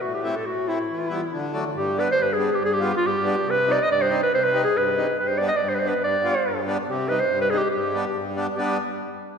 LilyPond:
<<
  \new Staff \with { instrumentName = "Clarinet" } { \time 2/4 \tempo 4 = 141 fis'16 g'8 a'16 fis'8 e'8~ | e'4. r8 | g'8 b'16 c''16 b'16 aes'8 g'16 | aes'16 g'8 f'16 g'4 |
b'8 d''16 ees''16 d''16 c''8 b'16 | c''16 b'8 aes'16 b'4 | b'16 c''16 d''16 ees''16 d''16 c''32 b'32 c''16 b'16 | d''4. r8 |
g'8 b'16 c''8 b'16 aes'16 g'16 | g'4. r8 | g'8 r4. | }
  \new Staff \with { instrumentName = "Accordion" } { \time 2/4 << { r8 <a c' e'>16 r8. <a c' e'>16 r16 | r8 <g b e'>16 r8. <fis a d'>16 r16 | r8 <g b d'>16 r8. <g b d'>16 r16 | r8 <g b f'>16 r8. <g b d'>16 r16 |
r8 <g c' ees'>16 r8. <g c' ees'>16 r16 | r8 <g c' ees'>16 r8. <g c' ees'>16 r16 | r8 <g b d'>16 r8. <g b d'>16 r16 | r8 <g b f'>16 r8. <g b d'>16 r16 |
r8 <g c' ees'>16 r8. <g c' ees'>16 r16 | r8 <g b d'>16 r8. <g b d'>16 r16 | <g b d'>8 r4. | } \\ { a,4 a,4 | e4 d4 | g,4 g,4 | g,4 g,4 |
c4 g,4 | c4 g,4 | g,4 g,4 | g,4 g,4 |
c4 g,4 | g,4 g,4 | r2 | } >> }
>>